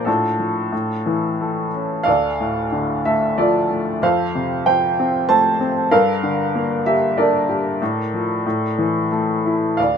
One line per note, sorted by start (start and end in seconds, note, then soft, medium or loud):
0.05 0.70 A2 medium
0.05 1.69 D4 soft
0.05 1.69 F4 soft
0.05 1.68 A4 medium
0.39 0.71 F3 soft
0.72 2.03 A2 soft
1.06 2.04 E3 soft
1.41 2.05 A3 soft
1.74 2.06 C#4 soft
2.03 3.98 D2 soft
2.03 3.01 A4 medium
2.03 3.00 D5 medium
2.03 2.67 F5 medium
2.40 3.65 A2 soft
2.72 3.97 D3 soft
3.05 3.69 A3 soft
3.05 3.38 E5 medium
3.38 4.00 F3 soft
3.38 3.98 F4 soft
3.38 3.98 A4 soft
3.38 4.04 D5 medium
3.70 4.01 A3 soft
4.02 5.87 F2 soft
4.02 4.94 A4 medium
4.02 4.65 C5 soft
4.02 4.62 F5 medium
4.35 5.56 C3 soft
4.66 5.88 F3 soft
4.66 5.27 C5 soft
4.66 5.24 G5 medium
4.99 5.59 C4 soft
5.29 5.89 A3 soft
5.29 5.87 C5 medium
5.29 5.72 A5 medium
5.61 5.90 C4 soft
5.91 7.77 G2 soft
5.91 6.82 A4 medium
5.91 6.82 A#4 medium
5.91 6.82 F5 medium
6.23 7.45 D3 soft
6.55 7.77 A#3 soft
6.86 7.47 G4 soft
6.86 7.18 E5 medium
7.18 7.79 D4 soft
7.18 9.08 A4 soft
7.18 9.08 A#4 soft
7.18 9.07 D5 medium
7.49 7.80 G4 soft
7.82 8.44 A2 medium
8.14 8.45 F3 soft
8.46 9.75 A2 medium
8.78 9.76 E3 soft
9.12 9.77 A3 soft
9.46 9.78 E4 soft
9.77 9.98 D2 soft
9.77 9.98 D5 soft
9.77 9.98 F5 medium